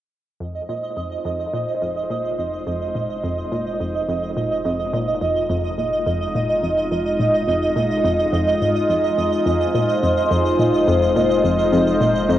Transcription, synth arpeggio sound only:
0.40 0.60 F2 medium
0.69 0.88 A#2 medium
0.97 1.17 F2 medium
1.25 1.52 F2 medium
1.54 1.65 A#2 medium
1.82 2.02 F2 medium
2.10 2.30 A#2 medium
2.39 2.58 F2 medium
2.67 2.94 F2 medium
2.95 3.07 A#2 medium
3.24 3.43 F2 medium
3.52 3.71 A#2 medium
3.80 4.00 F2 medium
4.09 4.35 F2 medium
4.37 4.49 A#2 medium
4.65 4.85 F2 medium
4.93 5.13 A#2 loud
5.21 5.41 F2 medium
5.50 5.77 F2 medium
5.78 5.90 A#2 medium
6.07 6.26 F2 medium
6.35 6.54 A#2 medium
6.63 6.83 F2 medium
6.91 7.18 F2 medium
7.20 7.31 A#2 medium
7.48 7.68 F2 medium
7.76 7.96 A#2 medium
8.05 8.24 F2 medium
8.33 8.60 F2 medium
8.61 8.81 G#2 medium
8.89 9.09 F2 medium
9.18 9.30 F2 medium
9.46 9.66 F2 medium
9.75 9.94 A#2 medium
10.03 10.22 F2 medium
10.31 10.58 F2 medium
10.59 10.71 A#2 medium
10.88 11.07 F2 loud
11.16 11.36 A#2 medium
11.44 11.64 F2 medium
11.72 11.99 F2 loud
12.01 12.13 A#2 medium
12.29 12.39 F2 medium

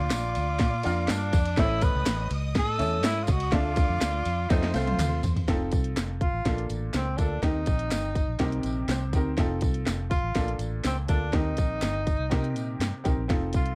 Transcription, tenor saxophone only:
0.00 1.10 F4 loud
1.11 1.60 D4 loud
1.59 1.85 E4 loud
1.83 2.29 B4 loud
2.58 3.02 A4 loud
3.05 3.25 E4 loud
3.23 3.32 F4 medium
3.31 3.53 F#4 loud
3.52 4.51 F4 loud
4.50 4.75 D#4 loud
4.74 5.23 F4 medium
6.22 6.67 F4 loud
6.95 7.18 C4 medium
7.17 7.42 D4 medium
7.43 8.85 D#4 loud
10.10 10.56 F4 loud
10.87 10.97 C4 medium
11.08 11.37 D4 medium
11.35 12.81 D#4 loud
13.56 13.75 F4 medium

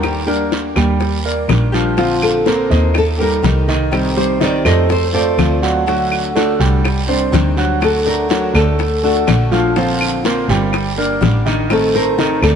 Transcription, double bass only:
0.00 0.69 D#2 medium
0.76 1.45 D#2 medium
1.48 2.64 A#1 medium
2.71 3.40 D#2 medium
3.43 4.59 C2 medium
4.65 5.34 F2 medium
5.37 6.53 D2 medium
6.59 7.29 C2 medium
7.33 8.48 D2 medium
8.54 9.23 D2 medium
9.27 10.43 A#1 medium
10.49 11.18 G1 medium
11.21 12.37 A1 medium
12.42 12.55 D2 medium

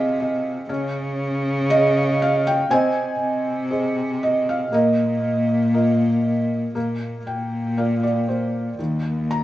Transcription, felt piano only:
0.00 0.65 C4 medium
0.00 0.66 G#4 soft
0.00 0.66 C5 soft
0.00 0.20 D#5 medium
0.00 0.71 F5 medium
0.00 0.71 G#5 medium
0.20 0.66 D#5 medium
0.69 2.67 C#4 medium
1.70 2.67 G#4 soft
1.70 2.68 C#5 soft
1.70 2.22 D#5 medium
1.70 2.21 F5 medium
2.22 2.47 F5 medium
2.47 2.72 G5 medium
2.71 4.68 C4 medium
2.71 3.69 C5 medium
2.71 3.69 D#5 medium
2.71 3.67 G#5 medium
3.71 4.69 G#4 soft
3.71 4.69 C5 soft
3.71 4.21 D#5 soft
4.23 4.48 D#5 medium
4.49 4.74 F5 medium
4.72 6.71 A#3 medium
4.72 5.73 A#4 medium
4.72 5.71 D#5 medium
5.74 6.72 F4 soft
5.74 6.72 A#4 soft
5.74 6.72 D#5 soft
6.75 8.75 A#3 medium
7.27 7.74 G5 medium
7.77 8.76 F4 soft
7.77 8.76 A#4 soft
7.77 8.02 D5 soft
7.77 8.01 F5 medium
8.03 8.27 D5 medium
8.29 8.76 C5 medium
8.79 9.44 D#3 medium
9.31 9.44 A#5 medium

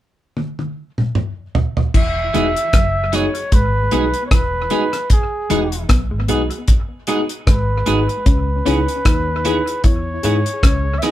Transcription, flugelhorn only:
1.97 3.17 E5 loud
3.15 3.56 C#5 medium
3.54 4.26 B4 loud
4.27 4.35 C#5 medium
4.33 5.11 B4 medium
5.12 5.86 G#4 medium
7.49 8.23 B4 medium
8.27 9.81 B4 medium
9.85 11.00 C#5 medium
10.98 11.04 E5 medium
11.03 11.11 D#5 medium

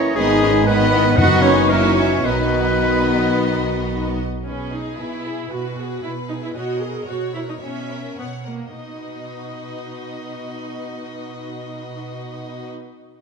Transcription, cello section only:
0.00 0.16 C#4 medium
0.17 0.67 G#3 medium
0.67 1.18 B3 loud
1.18 1.44 F#4 loud
1.44 1.70 C#4 medium
1.70 1.97 A#3 medium
1.97 2.25 C#4 medium
2.25 4.16 B3 medium
4.47 4.93 B2 soft
5.00 5.45 B2 soft
5.51 5.96 B2 soft
6.03 6.49 B2 soft
6.55 7.01 B2 soft
7.07 7.54 B2 soft
7.61 8.11 B2 soft
8.18 8.70 B2 soft
8.77 12.70 B2 soft

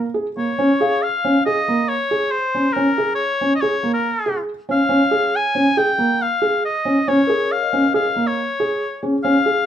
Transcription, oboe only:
0.00 0.17 A#4 medium
0.38 1.04 C#5 medium
1.02 1.45 F5 medium
1.46 1.90 D#5 medium
1.88 2.33 C#5 medium
2.31 2.74 C5 medium
2.73 3.14 A#4 medium
3.15 3.51 C#5 medium
3.55 3.62 D#5 medium
3.61 3.93 C#5 medium
3.94 4.39 A#4 medium
4.71 5.37 F5 medium
5.36 5.79 G#5 loud
5.78 6.23 G5 loud
6.22 6.64 F5 medium
6.65 7.09 D#5 medium
7.08 7.53 C#5 medium
7.52 7.94 F5 medium
7.95 8.28 F5 medium
8.27 9.03 C#5 medium
9.24 9.66 F5 medium

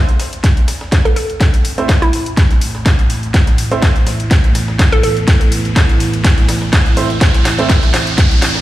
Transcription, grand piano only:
1.78 1.86 A3 medium
1.78 1.86 C4 medium
1.78 1.86 E4 medium
1.78 1.86 C5 medium
3.71 3.79 A3 medium
3.71 3.79 C4 medium
3.71 3.79 E4 medium
3.71 3.79 C5 loud
6.97 7.06 A3 medium
6.97 7.06 C4 medium
6.97 7.06 E4 medium
6.97 7.06 C5 medium
7.59 7.66 A3 medium
7.59 7.66 C4 medium
7.59 7.66 E4 medium
7.59 7.66 C5 loud

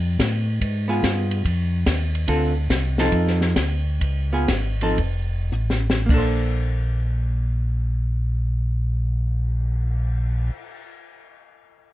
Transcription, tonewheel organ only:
0.00 0.18 F2 medium
0.19 0.60 A2 medium
0.61 1.01 G#2 medium
1.03 1.43 G2 medium
1.45 1.85 F2 medium
1.86 2.27 D#2 medium
2.28 2.69 D2 medium
2.70 3.11 C2 medium
3.12 3.55 F2 medium
3.56 4.00 D2 medium
4.01 4.47 C#2 medium
4.48 4.97 G#1 medium
4.99 5.50 F1 medium
5.52 6.08 A1 medium
6.09 10.51 A#1 medium

